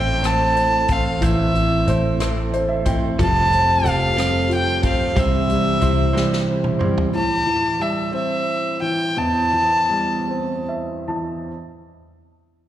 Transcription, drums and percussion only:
0.24 cross-stick, closed hi-hat
0.57 closed hi-hat
0.88 kick, closed hi-hat
1.22 kick, closed hi-hat
1.55 closed hi-hat
1.88 closed hi-hat
2.20 cross-stick, closed hi-hat
2.53 closed hi-hat
2.86 kick, closed hi-hat
3.19 kick, closed hi-hat
3.53 closed hi-hat
3.86 closed hi-hat
4.18 cross-stick, closed hi-hat
4.51 closed hi-hat
4.83 kick, closed hi-hat
5.17 kick, closed hi-hat
5.49 closed hi-hat
5.82 closed hi-hat
6.16 snare
6.33 snare
6.64 mid tom
6.81 mid tom
6.98 floor tom

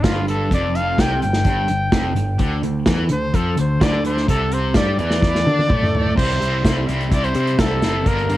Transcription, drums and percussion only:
0.04 kick, snare, closed hi-hat
0.28 closed hi-hat
0.51 kick, closed hi-hat
0.75 closed hi-hat
0.98 kick, snare, closed hi-hat
1.22 closed hi-hat
1.33 snare
1.45 kick, closed hi-hat
1.68 closed hi-hat
1.92 kick, snare, closed hi-hat
2.16 closed hi-hat
2.39 kick, closed hi-hat
2.63 closed hi-hat
2.86 kick, snare, closed hi-hat
3.09 closed hi-hat
3.34 kick, closed hi-hat
3.57 closed hi-hat
3.81 kick, snare, closed hi-hat
4.05 closed hi-hat
4.17 snare
4.28 kick, closed hi-hat
4.52 closed hi-hat
4.74 kick, snare, closed hi-hat
4.99 closed hi-hat
5.11 snare
5.22 kick, snare
5.35 snare
5.47 high tom
5.59 high tom
5.70 kick, mid tom
5.83 mid tom
5.95 floor tom
6.06 floor tom
6.18 kick, crash
6.31 closed hi-hat
6.42 closed hi-hat
6.65 kick, snare, closed hi-hat
6.89 closed hi-hat
7.01 closed hi-hat
7.11 kick, closed hi-hat
7.24 closed hi-hat
7.34 closed hi-hat
7.47 closed hi-hat
7.59 kick, snare, closed hi-hat
7.82 snare, closed hi-hat
8.06 kick, closed hi-hat
8.18 closed hi-hat
8.30 closed hi-hat

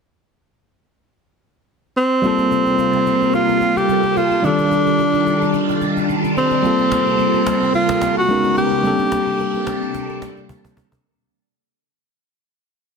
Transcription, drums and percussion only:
2.24 cajon slap
2.39 cajon slap
2.51 cajon slap
2.66 cajon slap
2.78 cajon slap
2.93 cajon slap
3.06 cajon slap
3.22 cajon slap
3.33 cajon slap
3.49 cajon slap
3.61 cajon slap
3.77 cajon slap
3.89 cajon slap
4.04 cajon slap
4.17 cajon slap
4.31 cajon slap
4.44 cajon slap
4.59 cajon slap
4.71 cajon slap
4.87 cajon slap
4.99 cajon slap
5.14 cajon slap
5.27 cajon slap
5.42 cajon slap
5.54 cajon slap
5.69 cajon slap
5.81 cajon slap
5.97 cajon slap
6.09 cajon slap
6.24 cajon slap
6.37 cajon slap
6.51 cajon slap
6.64 cajon slap
6.79 cajon slap
6.92 cajon slap
7.07 cajon slap
7.19 cajon slap
7.34 cajon slap
7.47 cajon slap
7.62 cajon slap
7.74 cajon slap
7.89 cajon slap
8.01 cajon slap
8.17 cajon slap
8.29 cajon slap
8.44 cajon slap
8.57 cajon slap
8.71 cajon slap
8.84 cajon slap
8.99 cajon slap
9.12 cajon slap
9.27 cajon slap
9.39 cajon slap
9.54 cajon slap
9.67 cajon slap
9.83 cajon slap
9.94 cajon slap
10.10 cajon slap
10.22 cajon slap
10.37 cajon slap
10.49 cajon bass
10.65 cajon bass
10.77 cajon bass
10.92 cajon bass

